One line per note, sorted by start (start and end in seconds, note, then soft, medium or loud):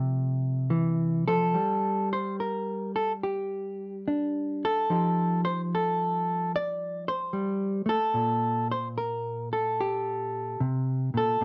0.00 1.52 C3 medium
0.00 0.70 F3 medium
0.00 1.52 A3 medium
0.00 0.41 D5 loud
0.70 1.27 E3 medium
1.28 1.56 F3 medium
1.28 2.11 A4 loud
1.54 7.32 G3 medium
2.13 2.40 C5 medium
2.40 2.95 A#4 medium
2.96 3.12 A4 medium
3.23 4.90 G4 medium
4.08 4.87 D4 medium
4.65 5.44 A4 loud
4.90 8.12 F3 medium
4.90 8.12 D#4 soft
4.90 8.42 G4 soft
5.45 5.61 C5 loud
5.75 6.55 A4 medium
6.56 7.08 D5 loud
7.08 7.88 C5 loud
7.33 7.85 G3 medium
7.86 8.14 A3 medium
7.86 8.69 A4 loud
8.14 10.60 A#2 medium
8.71 8.87 C5 medium
8.98 9.51 A#4 medium
9.53 10.61 A4 medium
9.81 11.41 G4 medium
10.60 11.14 C3 medium
11.14 11.40 A#2 medium
11.14 11.45 A4 loud
11.41 11.45 A2 medium
11.41 11.45 C4 soft